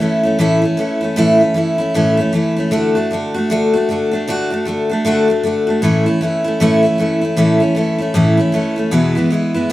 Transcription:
0.00 E3 A3 C#4 E4
0.23 A3 C#4 E4
0.39 A2 E3 A3 C#4 E4
0.62 A3 C#4 E4
0.77 E3 A3 C#4 E4
1.01 A3 C#4 E4
1.16 A2 E3 A3 C#4 E4
1.39 C#4 E4
1.54 E3 A3 C#4 E4
1.78 A3 C#4 E4
1.94 A2 E3 A3 C#4 E4
2.17 A3 C#4 E4
2.33 E3 A3 C#4 E4
2.56 A3 C#4 E4
2.71 D3 A3 D4 F#4
2.95 A3 D4 F#4
3.11 D3 A3 D4 F#4
3.34 A3 D4 F#4
3.50 D3 A3 D4 F#4
3.73 A3 D4 F#4
3.89 D3 A3 D4 F#4
4.11 A3 D4 F#4
4.28 D3 A3 D4 F#4
4.50 A3 D4 F#4
4.65 D3 A3 D4 F#4
4.89 A3 D4 F#4
5.05 D3 A3 D4 F#4
5.28 F#4
5.43 D3 A3 D4 F#4
5.67 A3 D4 F#4
5.82 A2 E3 A3 C#4 E4
6.06 A3 C#4 E4
6.21 E3 A3 C#4 E4
6.44 A3 C#4 E4
6.60 A2 E3 A3 C#4 E4
6.83 A3 C#4 E4
6.98 E3 A3 C#4 E4
7.21 A3 C#4 E4
7.37 A2 E3 A3 C#4 E4
7.60 A3 C#4 E4
7.75 E3 A3 C#4 E4
7.98 A3 C#4 E4
8.14 A2 E3 A3 C#4 E4
8.37 A3 C#4 E4
8.52 E3 A3 C#4 E4
8.76 A3 C#4 E4
8.91 E2 B2 E3 G#3 B3 E4
9.15 E3 G#3 B3 E4
9.30 E3 G#3 B3 E4
9.54 E3 G#3 B3 E4

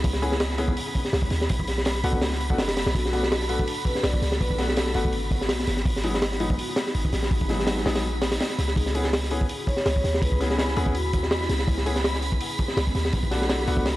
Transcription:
Already playing: B3 C#4 E4 G#4 B5
0.04 C#2, kick, open hi-hat
0.13 snare
0.22 B3 C#4 E4 G#4, open hi-hat
0.32 snare
0.40 snare, open hi-hat
0.50 snare
0.58 B3 C#4 E4 G#4, open hi-hat
0.68 kick
0.77 open hi-hat
0.95 kick, open hi-hat
1.05 snare
1.13 C#2, snare, open hi-hat
1.22 kick
1.30 D#2, snare, open hi-hat
1.41 snare
1.49 B1 D4 F#4 A4, kick, open hi-hat
1.59 kick
1.67 snare, open hi-hat
1.78 snare
1.85 snare, open hi-hat
1.95 snare
2.04 C#2 A3 B3 D4 F#4, open hi-hat
2.13 kick
2.22 snare, open hi-hat
2.33 snare
2.40 open hi-hat
2.50 A3 B3 D4 F#4, kick
2.58 F#1, snare, open hi-hat
2.68 snare, open hi-hat
2.77 snare, open hi-hat
2.86 B1, snare, open hi-hat
2.95 B1 F#4, kick, open hi-hat
3.05 snare
3.13 A3 B3 D4 F#4, open hi-hat
3.23 snare
3.32 snare, open hi-hat
3.41 snare
3.49 A3 B3 D4 F#4, open hi-hat
3.59 kick
3.67 open hi-hat
3.85 B4, kick, open hi-hat
3.95 snare
4.03 B1 D5, snare, open hi-hat
4.14 kick
4.22 C#2, snare, open hi-hat
4.32 snare
4.40 B1 B4, kick, open hi-hat
4.50 kick
4.58 A3 B3 D4 F#4, snare, open hi-hat
4.69 snare
4.77 snare, open hi-hat
4.87 snare
4.94 G#1 A3 B3 D4 F#4, open hi-hat
5.05 kick
5.13 D#4 G#4, open hi-hat
5.31 kick, open hi-hat
5.41 snare
5.49 B1 B3, snare, open hi-hat
5.59 B3, snare
5.67 G#1, snare, open hi-hat
5.77 snare
5.85 G#1, kick, open hi-hat
5.96 snare
6.04 F#3 G#3 B3 D#4, open hi-hat
6.14 snare
6.22 snare, open hi-hat
6.32 snare
6.40 F#3 G#3 B3 D#4, open hi-hat
6.50 kick
6.59 open hi-hat
6.76 snare, open hi-hat
6.87 snare
6.95 G#1, open hi-hat
7.05 kick
7.13 A#1, snare, open hi-hat
7.23 snare
7.31 G#1, kick, open hi-hat
7.41 kick
7.49 F#3 G#3 B3 D#4, snare, open hi-hat
7.60 snare
7.67 snare, open hi-hat
7.78 snare
7.86 A#1 F#3 G#3 B3 D#4, snare, open hi-hat
7.95 snare, open hi-hat
8.22 snare, open hi-hat
8.32 snare, open hi-hat
8.40 snare, open hi-hat
8.50 snare
8.58 C#2, snare, open hi-hat
8.68 snare
8.76 C#2 B3 C#4 E4 G#4 B5, kick, open hi-hat
8.86 snare
8.95 B3 C#4 E4 G#4, open hi-hat
9.04 snare
9.13 snare, open hi-hat
9.22 snare
9.31 B3 C#4 E4 G#4, open hi-hat
9.41 kick
9.49 open hi-hat
9.67 C#5, kick, open hi-hat
9.77 C#5, snare
9.86 C#2, snare, open hi-hat
9.96 kick
10.04 D#2, snare, open hi-hat
10.14 snare
10.22 C#2 B4, kick, open hi-hat
10.32 kick
10.40 B3 C#4 E4 G#4, snare, open hi-hat
10.51 snare
10.58 snare, open hi-hat
10.68 snare
10.76 D#2 B3 C#4 E4 G#4, open hi-hat
10.86 kick
10.95 F#4, open hi-hat
11.13 kick, open hi-hat
11.23 snare
11.31 E2, snare, open hi-hat
11.41 snare
11.49 C#2, snare, open hi-hat
11.59 snare
11.68 C#2, kick, open hi-hat
11.78 snare
11.86 B3 C#4 E4 G#4, open hi-hat
11.96 snare
12.04 snare, open hi-hat
12.13 snare
12.22 open hi-hat
12.32 kick
12.40 open hi-hat
12.58 kick, open hi-hat
12.68 snare
12.77 C#2, snare, open hi-hat
12.87 kick
12.95 D#2, snare, open hi-hat
13.05 snare
13.13 B1 D4 F#4 A4, kick, open hi-hat
13.23 kick
13.31 A3 B3 D4 F#4, snare, open hi-hat
13.42 snare
13.49 snare, open hi-hat
13.60 snare
13.67 C#2 A3 B3 D4 F#4, open hi-hat
13.77 kick
13.86 snare, open hi-hat

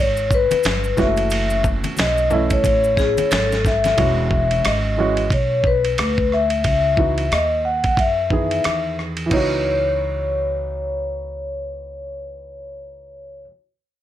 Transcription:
Already playing: G#1
0.01 C#5
0.17 maracas
0.31 B4, kick, maracas
0.51 muted upright bass stroke, ride, high conga, maracas
0.63 G1, snare, hi-hat pedal, ride, maracas
0.84 maracas
0.97 F#1 E3 G#3 C#4 F#4, kick, snare, low conga, maracas
1.01 A3 E5
1.17 ride, maracas
1.30 ride, maracas
1.50 maracas
1.64 kick, low conga, maracas
1.84 muted upright bass stroke, ride, high conga, maracas
1.97 B1 D#5, snare, hi-hat pedal, ride, high conga, maracas
2.18 maracas
2.30 E3 A3 C#4 E4, low conga, maracas
2.50 C#5, kick, ride, maracas
2.64 A1, kick, ride, high conga, maracas
2.84 maracas
2.97 G#4, kick, snare, maracas
3.18 muted upright bass stroke, ride, high conga, maracas
3.31 G#1 A4, snare, hi-hat pedal, ride, maracas
3.52 snare, maracas
3.65 E5, kick, snare, low conga, maracas
3.84 snare, ride, high conga, maracas
3.97 E1 E3 G#3 C#4 F#4, kick, ride
4.31 kick
4.51 ride
4.65 G#1 D#5, cross-stick, hi-hat pedal, ride
4.97 E3 G#3 C#4 F#4
5.17 ride
5.30 B1 C#5, kick, ride
5.64 B4, kick
5.85 ride
5.98 D2, cross-stick, hi-hat pedal, ride
6.18 kick
6.32 E5, cross-stick
6.50 ride
6.64 C#2, kick, ride
6.97 E3 B3 D#4 F#4, kick
7.18 ride
7.31 D#2 D#5, cross-stick, hi-hat pedal, ride
7.65 F#5
7.84 kick, ride
7.97 F#2 E5, kick, ride
8.30 D#3 E3 B3 G#4, kick
8.51 ride
8.64 E2, cross-stick, hi-hat pedal, ride
8.99 cross-stick
9.17 ride
9.26 E3 B3
9.31 C#2 D#4 C#5, kick, crash
9.37 F#4

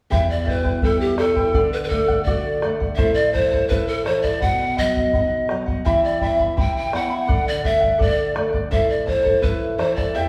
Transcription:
0.10 E2 E4 G4 B4 E5 G5, bombo low
0.30 D5
0.45 B2 E4 B4 E5 G5, bombo low
0.49 B4
0.64 E4 B4 G5, bombo low
0.82 G3 E4 A4 B4 E5 G5, bombo low
1.00 G4
1.18 B2 E4 A4 B4 E5 G5, bombo rim
1.36 E4 B4 G5, bombo low
1.53 D3 A4 D5 F#5, bombo low
1.73 B4
1.84 B4
1.88 A3 A4 D5 F#5, bombo low
2.08 D5 F#5, bombo low
2.23 F#4 A4 D5, bombo low
2.28 F#5
2.62 A3 A4 D5 F#5, bombo rim
2.80 D5 F#5, bombo low
2.96 E4 A4 C5 E5 A5, bombo low
3.00 A2
3.14 D5
3.33 E3 E4 A4 C5 E5 A5, bombo low
3.51 E4 A4 A5, bombo low
3.69 E4 A4 B4 E5 A5, bombo low
3.87 A4
4.04 E3 E4 A4 C5 E5 A5, bombo rim
4.22 E4 A4 D5 A5, bombo low
4.41 B2 B4 D#5 F#5, bombo low
4.77 F#3 B4 D#5 F#5, bombo low
4.95 D#5 F#5, bombo low
5.13 D#4 B4 D#5 F#5, bombo low
5.49 F#3 B4 D#5 F#5, bombo rim
5.66 D#5 F#5, bombo low
5.85 E3 E4 G4 E5 G5 B5, bombo low
6.04 D5
6.21 B3 E4 E5 G5 B5, bombo low
6.39 E4 E5 B5, bombo low
6.57 E4 G4 E5 G5 B5, bombo low
6.77 G5
6.91 B3 E4 E5 F#5 G5 B5, bombo rim
7.10 E4 E5 B5
7.27 D3 A4 D5 F#5, bombo low
7.48 D5
7.64 A3 A4 D5 E5 F#5, bombo low
7.81 D5 F#5, bombo low
7.98 A4 D5 F#5, bombo low
8.34 A3 A4 D5 F#5, bombo rim
8.53 D5 F#5, bombo low
8.71 A2 E4 A4 C5 E5 A5, bombo low
8.89 D5
9.06 E3 E4 A4 C5 E5 A5, bombo low
9.24 E4 A4 A5, bombo low
9.42 E4 A4 B4 E5 A5, bombo low
9.78 E3 E4 A4 C5 E5 A5, bombo rim
9.96 E4 A4 D5 A5, bombo low
10.14 E2 E4 G4 B4 E5 G5

